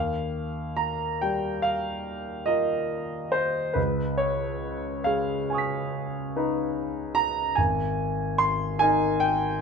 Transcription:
Already playing: D#2 F5
0.76 A#5
1.21 G3 G5
1.62 F5
2.46 F4 A#4 D#5
3.32 C5
3.73 C#2 B4
4.17 C#5
5.04 G#3 F5
5.50 G#5 C#6
5.55 D#6 B6
6.36 D#4 B4
7.15 A#5
7.55 G#1 G#5
8.38 C6
8.79 D#4 A#4 G#5
9.20 G5

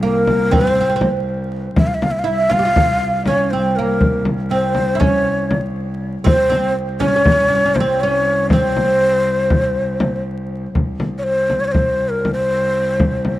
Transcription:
Already playing: C2
0.03 A#3 A#4
0.27 frame drum
0.51 C4 C5, frame drum
0.61 C4
0.67 C4
0.75 C4
0.81 C4
0.90 C4
0.96 C4
1.01 frame drum
1.76 C2 E5, frame drum
1.87 F5
1.94 E5
2.02 F5, frame drum
2.11 E5
2.19 F5
2.24 E4 E5
2.50 F4 F5, frame drum
2.59 G4
2.65 F4
2.76 frame drum
3.26 C#4 C#5, frame drum
3.51 C4 C5
3.76 A#3 A#4
4.01 frame drum
4.25 frame drum
4.51 C4 C5
4.75 frame drum
4.95 E4
5.00 C#4 C#5, frame drum
5.51 frame drum
6.24 C2 C4 C5, frame drum
6.50 C4, frame drum
7.00 C#4 C#5, frame drum
7.08 C#4
7.16 C#4
7.25 C#4, frame drum
7.32 C#4
7.40 C#4
7.48 C#4
7.55 C#4
7.65 C#4
7.75 C5, frame drum
7.80 C4
8.01 C#4 C#5
8.50 C4 C5, frame drum
8.76 frame drum
9.50 frame drum
10.00 frame drum
10.75 C2, frame drum
11.00 frame drum
11.18 C#5
11.23 C5
11.50 frame drum
11.60 C#5
11.65 C5 C#5
11.72 C5, frame drum
12.09 A#4
12.25 frame drum
12.33 C5
13.00 frame drum
13.25 frame drum

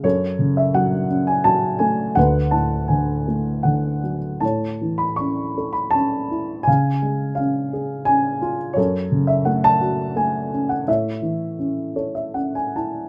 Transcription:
0.03 F#2 A4 C#5
0.39 C#3
0.57 E5
0.74 F#3 F#5
1.09 C#4
1.27 G#5
1.44 F#3 A5
1.79 A3 G#5
2.15 D2 B4 F#5
2.51 A2 A5
2.88 D3 G#5
3.28 A3
3.63 D3 F#5
4.03 F#3
4.40 A2 A5
4.45 C#5
4.81 E3
4.98 B5
5.16 C#4 C#6
5.58 A4
5.73 B5
5.91 A5
5.95 C#4
6.30 E4
6.63 C#3 G#5
6.67 F5
7.02 G#3
7.35 F5
7.39 C#4
7.73 G#4
8.05 C#4 G#5
8.42 F4
8.73 F#2 C#5
8.78 A4
9.12 C#3
9.27 E5
9.45 A3 F#5
9.64 A5
9.81 F#4
10.16 A3 G#5
10.53 C#4
10.69 F#5
10.88 A2 E5
10.92 C#5
11.22 E3
11.59 C#4
11.96 A4 C#5
12.15 E5
12.34 C#4 F#5
12.55 G#5
12.76 E4 A5

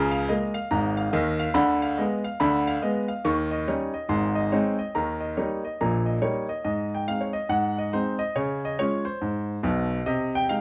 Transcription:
Already playing: C#2 C#3 A#5
0.11 F5
0.29 G#3 A#3 D#5
0.54 F5
0.71 G#1 G#2 A#5
0.97 F5
1.13 D#2 D#3 D#5
1.39 F5
1.54 D2 D3 B5
1.82 F5
1.98 G#3 B3 D#5
2.24 F5
2.40 D2 D3 B5
2.67 F5
2.82 G#3 B3 D#5
3.08 F5
3.25 D#2 D#3 C#6
3.51 D#5
3.68 G3 C#4 D#4 C#5
3.94 D#5
4.09 G#1 G#2 C6
4.35 D#5
4.52 G#3 C4 D#4 C#5
4.79 D#5
4.95 D#2 D#3 A#5
5.21 D#5
5.37 G3 A#3 D#4 C#5
5.65 D#5
5.81 A#1 A#2 A#5
6.06 D#5
6.22 G3 A#3 D#4 C#5
6.49 D#5
6.64 G#2 D#5
6.95 G5
7.08 G#3 C4 D#4 F5
7.21 C#5
7.33 D#5
7.49 G#2 F#5
7.78 D#5
7.93 G#3 C4 D#4 C5
8.19 D#5
8.36 C#3 C#5
8.65 D#5
8.79 G#3 C#4 F4 C#5
9.05 C5
9.21 G#2
9.63 B1 B2
10.06 C3 D#5
10.35 G5
10.49 G#3 D#4 F5

